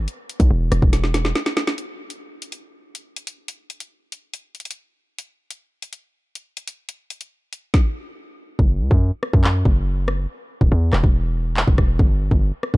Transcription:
0.08 closed hi-hat
0.29 closed hi-hat
0.40 B1, kick, closed hi-hat
0.51 E1
0.72 E1, cross-stick, closed hi-hat
0.82 E1, kick
0.93 snare, closed hi-hat
1.04 snare
1.14 snare, closed hi-hat
1.25 snare
1.35 snare
1.46 snare
1.57 snare
1.67 snare
1.78 closed hi-hat
2.10 closed hi-hat
2.42 closed hi-hat
2.52 closed hi-hat
2.95 closed hi-hat
3.16 closed hi-hat
3.27 closed hi-hat
3.48 closed hi-hat
3.70 closed hi-hat
3.80 closed hi-hat
4.12 closed hi-hat
4.34 closed hi-hat
4.55 closed hi-hat
4.60 closed hi-hat
4.65 closed hi-hat
4.71 closed hi-hat
5.18 closed hi-hat
5.51 closed hi-hat
5.82 closed hi-hat
5.93 closed hi-hat
6.35 closed hi-hat
6.57 closed hi-hat
6.68 closed hi-hat
6.89 closed hi-hat
7.10 closed hi-hat
7.21 closed hi-hat
7.53 closed hi-hat
7.74 kick, snare
8.59 F#1, kick
8.80 C#2
8.91 F#2, kick
9.23 cross-stick
9.33 F#2, kick
9.44 clap
9.65 F#1, kick
10.08 cross-stick
10.61 E1, kick
10.72 E2
10.93 E1, cross-stick, clap
11.04 E1, kick
11.57 clap
11.68 E1, kick
11.78 E1, kick, cross-stick
11.99 G1, kick
12.31 G1, kick
12.63 cross-stick
12.74 G1, kick

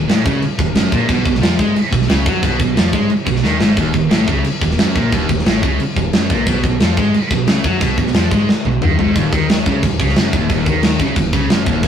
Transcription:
0.09 A1 A2, snare, crash
0.25 C#2 C#3, kick
0.42 crash
0.58 D#1 D#2, kick
0.75 F#1 F#2, snare, crash
0.91 A#1 A#2, kick
1.08 B1 B2, kick, crash
1.24 B1 B2, kick
1.35 snare
1.40 F2 F3, snare, crash
1.58 G#2 G#3, kick
1.76 crash
1.92 B1 B2, kick
2.02 snare
2.08 C#2 C#3, snare, crash
2.26 F#2 F#3, kick
2.42 B1 B2, kick, crash
2.59 B1 B2, kick
2.76 F2 F3, snare, crash
2.93 G#2 G#3, kick
3.10 crash
3.27 B1 B2, kick
3.36 snare
3.43 D#2 D#3, snare
3.60 G#1 G#2, snare
3.77 D#1 D#2, kick, crash
3.93 D#1 D#2, kick
4.10 A1 A2, snare, crash
4.26 C#2 C#3, kick
4.44 crash
4.60 D#1 D#2, kick
4.71 snare
4.78 F#1 F#2, snare, crash
4.94 A#1 A#2, kick
5.11 D#1 D#2, kick, crash
5.28 D#1 D#2, kick
5.39 snare
5.45 A1 A2, snare, crash
5.62 C#2 C#3, kick
5.80 crash
5.96 D#1 D#2, kick
6.13 F#1 F#2, snare, crash
6.29 A#1 A#2, kick
6.46 B1 B2, kick, crash
6.63 B1 B2, kick
6.80 F2 F3, snare, crash
6.96 G#2 G#3, kick
7.14 crash
7.31 B1 B2, kick
7.47 C#2 C#3, snare, crash
7.64 F#2 F#3, kick
7.80 B1 B2, kick, crash
7.98 B1 B2, kick
8.07 snare
8.14 F2 F3, snare, crash
8.31 G#2 G#3, kick
8.49 snare
8.65 B1 B2, high tom
8.82 D#2 D#3, mid tom
8.99 G#1 G#2, floor tom
9.16 D#1 D#2, kick, crash
9.32 D#2 D#3, kick
9.49 snare, crash
9.66 C#2 C#3, kick
9.83 D#1 D#2, kick, crash
10.00 C#2 C#3, kick
10.09 snare
10.16 F#1 F#2, snare, crash
10.33 D#1 D#2, kick
10.50 D#1 D#2, kick, crash
10.66 D#2 D#3, kick
10.83 snare, crash
11.00 C#2 C#3, kick
11.16 D#1 D#2, kick, crash
11.33 C#2 C#3, kick
11.49 F#1 F#2, snare, crash
11.65 D#1 D#2, kick
11.83 D#1 D#2, kick, crash

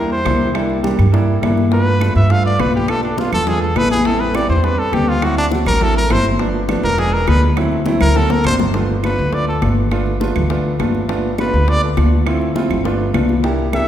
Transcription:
Already playing: E2 G3 A#3 D4 E4 A#4
0.12 C5, high conga
0.25 C2 G3 A#3 D4 E4, high bongo, low bongo, high conga, claves
0.54 G3 A#3 D4 E4, high bongo, high conga, claves
0.70 high bongo, high conga
0.83 G3 A#3 D4 G4, high bongo, high conga
0.99 G2, high bongo, high conga, low conga, claves
1.12 G3 A#3 D4 E4, high bongo, high conga
1.29 high conga
1.41 G2 G3 A#3 D4 E4, high bongo, low bongo, high conga, claves
1.58 high bongo, high conga
1.71 A3 B3 D4 F4 B4, high bongo, high conga
1.87 high conga
2.00 A3 B3 D4 F4, high bongo, high conga, claves
2.15 G2 E5
2.30 A3 B3 D4 F4 F5, high bongo, high conga
2.45 D5, high conga
2.59 B1 A3 B3 D4 F4 B4, high bongo, low bongo, high conga, claves
2.74 G4, high conga
2.87 A3 B3 D4 F4 A4, high bongo, claves
3.03 D4, high bongo, high conga
3.17 A3 B3 D4 F4, high bongo, high conga
3.32 E2 A4, high bongo, high conga, low conga, claves
3.46 G#3 B3 D4 F4 G#4, high bongo, high conga, low conga
3.62 A4, high conga
3.75 A1 G#3 B3 D4 E4 B4, high bongo, low bongo, high conga, claves
3.91 G#4, high bongo, high conga
4.05 G3 B3 C4 E4 A4, high bongo, high conga
4.20 B4, high conga
4.34 G3 B3 C4 E4 D5, high bongo, high conga, claves
4.49 E2 C5
4.63 G3 B3 C4 D4 B4, high bongo, high conga
4.79 A4, high conga
4.92 D2 G3 B3 C4 D4 G4, high bongo, low bongo, high conga, claves
5.09 F4
5.21 F#3 A3 C4 E4 F#4, high bongo, high conga, claves
5.37 D4, high bongo
5.51 F#3 A3 C4 F#4, high bongo, high conga
5.66 A1 A#4, high bongo, high conga, low conga, claves
5.80 F#3 A3 C4 E4 A4, high bongo, high conga, low conga
5.96 A#4, high conga
6.09 G1 F#3 A3 C4 E4 C5, high bongo, low bongo, high conga, claves
6.25 high bongo, high conga
6.39 F3 A3 B3 D4, high bongo, high conga
6.54 high conga
6.68 F3 A3 B3 D4, high bongo, high conga, claves
6.83 E1 A#4
6.97 F3 G#3 B3 D4 G#4, high bongo, high conga
7.13 A#4, high conga
7.27 D2 F3 G#3 B3 D4 B4, high bongo, low bongo, high conga, claves
7.56 F#3 A3 C4 E4, high bongo, high conga, claves
7.71 high bongo, high conga
7.86 F#3 A3 C4 E4, high bongo, high conga
8.01 D2 A#4, high bongo, high conga, low conga, claves
8.15 F#3 A3 C4 F#4 A4, high bongo, high conga
8.30 A#4, high bongo, high conga
8.44 G1 F#3 A3 C4 D4 C5, low bongo, claves
8.59 low bongo, low conga
8.74 A3 B3 D4 F4, high bongo, high conga
8.89 high conga
9.03 A3 B3 D4 F4 B4, high bongo, high conga, claves
9.18 D2
9.32 A3 B3 D4 F4 D5, high bongo, high conga
9.48 A4, high conga
9.62 G1 A3 B3 D4 F4, high bongo, low bongo, high conga, claves
9.91 A3 B3 D4 F4, high bongo, high conga, claves
10.06 high bongo, high conga
10.20 A3 B3 D4 F4, high bongo, high conga
10.35 D2, high bongo, high conga, low conga, claves
10.50 A3 B3 D4 F4, high bongo, high conga
10.65 high conga
10.79 G1 A3 B3 D4 F4, high bongo, low bongo, high conga, claves
10.95 high bongo, high conga
11.08 A3 B3 D4 F4, high bongo, high conga
11.24 high conga
11.38 A3 B3 D4 F4 B4, high bongo, high conga, claves
11.53 D2
11.67 A3 B3 D4 F4 D5, high bongo, high conga
11.83 A4, high conga
11.97 D2 A3 B3 D4 F4, high bongo, low bongo, high conga, claves
12.26 A3 C4 E4 F4, high bongo, high conga, claves
12.41 high bongo, high conga
12.55 A3 C4 E4 F4, high bongo, high conga
12.70 G1, high bongo, high conga, low conga, claves
12.84 A3 B3 D4 F4, high bongo, high conga
13.00 high conga
13.13 C2 A3 B3 D4 F4, high bongo, low bongo, high conga, claves
13.29 high bongo, high conga
13.43 A#3 D4 E4 G4, high bongo, high conga
13.59 high conga
13.72 A#3 D4 E4 G4 E5, high bongo, high conga, claves

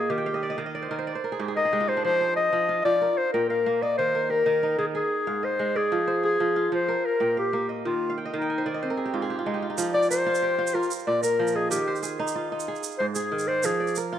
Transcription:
Already playing: A#2 A#3 F4 G#4 D#5 G5
0.10 D#3 G4 F5
0.18 G5
0.26 F5
0.34 D#5
0.43 D5
0.50 D#5
0.58 D#3 F5
0.66 D#5
0.75 D5
0.82 C5
0.91 D#3 A#4
0.99 C5
1.07 D5
1.15 C5
1.24 A#4
1.32 G#4
1.39 G#2 G4
1.48 G#4
1.56 A#4 D#5
1.65 G#4
1.73 G#3 G4
1.80 F4
1.88 D#4 C5
1.97 D4
2.04 F3 C5
2.21 C5
2.36 G#4 D#5
2.53 F3
2.69 F4
2.85 F3 D5
3.02 A#4
3.17 C5
3.33 A#2 A#4 G5
3.48 A#4 F5
3.66 A#3
3.82 D5 D#5
3.98 D#3 C5
4.15 A#4
4.30 G4 A#4
4.46 D#3
4.63 D#4
4.79 D#3 G#4
4.95 G#4
5.27 G#2 F5
5.43 C5 D#5
5.59 G#3
5.76 G#4 D5
5.92 F3
6.07 C5
6.23 G#4
6.40 F3
6.56 F4
6.72 F3 C5
6.88 A#4
7.05 A#4
7.20 A#2 G5
7.37 G4 F5
7.53 A#3
7.69 D#5
7.85 D#3 F4
8.10 F5
8.18 G5
8.25 D#5
8.34 D#3 D#4 F5
8.42 G5
8.50 G#5
8.58 C5
8.66 D#3 D5
8.74 D#5
8.83 C4 C5
8.90 A#4
8.97 G#4
9.05 G4
9.14 G#2 F4
9.22 G#4
9.30 G4
9.39 F4
9.46 G#3 D#4
9.54 G4
9.62 F4
9.70 D#4
9.78 F3, shaker
9.93 D5
10.03 shaker
10.10 A#4 C5, shaker
10.26 F4
10.35 shaker
10.42 G4
10.58 F4
10.67 shaker
10.75 F4 A#4
10.83 shaker
10.91 shaker
11.07 A#2 D5
11.22 A#4, shaker
11.39 F3
11.47 shaker
11.55 G#4 D#5
11.71 D#3 G4, shaker
11.87 C5
11.96 shaker
12.03 G#4, shaker
12.19 D#4
12.27 shaker
12.36 F4
12.52 D#4
12.60 shaker
12.68 G#4
12.76 shaker
12.83 shaker
12.91 shaker
12.98 G#2 C5
13.14 G#4, shaker
13.32 D#3
13.39 shaker
13.48 C5 D5
13.63 F3 G#4, shaker
13.80 D5
13.87 shaker
13.95 A#4, shaker
14.13 F4

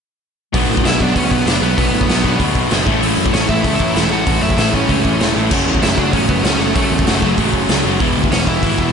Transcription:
0.54 B1 B2 F#3 B3 D4 F#4, kick, open hi-hat
0.70 A2
0.77 kick
0.84 B1 B2 F#3 B3 D4 E4 F#4 E5, snare, open hi-hat
1.00 B1 B2 F#3 B3 D4 F#4 D5, kick
1.15 D2 B2 F#3 B3 C#4 D4 F#4 C#5, kick, open hi-hat
1.31 B1 B3 B4, kick
1.46 F#1 B2 F#3 B3 D4 F#4 D5, snare, open hi-hat
1.61 B1 B2 F#3 B3 D4 F#4 B4
1.76 B1 B2 F#3 B3 D4 F#4 B4, kick, open hi-hat
1.94 A2
2.01 kick
2.07 B1 B2 F#3 B3 D4 F#4, snare, open hi-hat
2.23 B1 B2 F#3 B3 D4 F#4, kick
2.39 D2 B2 F#3 B3 D4 F#4, kick, open hi-hat
2.55 B1, kick
2.70 F#1 B2 F#3 B3 D4 F#4, snare, open hi-hat
2.85 A1 A2 E3 A3 C#4 E4, kick
3.01 A1 A2 E3 A3 C#4 E4, open hi-hat
3.17 F#2
3.26 kick
3.32 A1 A2 E3 A3 C#4 E4 C#5, snare, open hi-hat
3.48 A1 A2 E3 A3 C#4 E4 E5, kick
3.63 C#2 A2 E3 A3 C#4 E4, kick, open hi-hat
3.80 A1, kick
3.95 E1 A2 E3 A3 C#4 E4, snare, open hi-hat
4.11 A1 A2 E3 A3 C#4 E4 F#4 F#5
4.26 A1 A2 E3 A3 C#4 E4, kick, open hi-hat
4.42 F#2 E4 E5
4.50 kick
4.57 A1 A2 E3 A3 C#4 E4 E5, snare, open hi-hat
4.73 A1 A2 E3 A3 C#4 E4 C#5, kick
4.89 C#2 A2 E3 A3 C#4 E4, kick, open hi-hat
5.05 A1, kick
5.20 E1 A2 E3 A3 C#4 E4, snare, open hi-hat
5.35 A1 A2 E3 A3 C#4 E4
5.51 F#1 F#2 C#3 F#3 A3 C#4 F#4, kick, crash
5.66 E2
5.75 kick
5.82 F#1 F#2 C#3 F#3 A3 C#4 E4 F#4 E5, snare, open hi-hat
5.97 F#1 F#2 C#3 F#3 A3 C#4 D4 F#4 D5, kick
6.13 A1 F#2 C#3 F#3 A3 C#4 F#4 C#5, kick, open hi-hat
6.29 F#1 B3 B4, kick
6.44 C#2 F#2 C#3 F#3 A3 C#4 F#4 C#5, snare, open hi-hat
6.59 F#1 F#2 C#3 F#3 A3 C#4 F#4 A4
6.74 F#1 F#2 C#3 F#3 A3 C#4 F#4 A4, kick, open hi-hat
6.92 E2
6.99 kick
7.06 F#1 F#2 C#3 F#3 A3 C#4 F#4, snare, open hi-hat
7.22 F#1 F#2 C#3 F#3 A3 C#4 F#4, kick
7.37 A1 F#2 C#3 F#3 A3 C#4 F#4, kick, open hi-hat
7.54 F#1, kick
7.68 C#2 F#2 C#3 F#3 A3 C#4 F#4, snare, open hi-hat
7.84 F#1 F#2 C#3 F#3 A3 C#4 F#4
8.00 E1 E2 B2 E3 G#3 B3 E4, kick, open hi-hat
8.17 D2
8.24 kick
8.31 E1 E2 B2 E3 G#3 B3 C#4 E4 C#5, snare, open hi-hat
8.47 E1 E2 B2 E3 G#3 B3 E4 E5, kick
8.62 G#1 E2 B2 E3 G#3 B3 E4, kick, open hi-hat
8.78 E1, kick

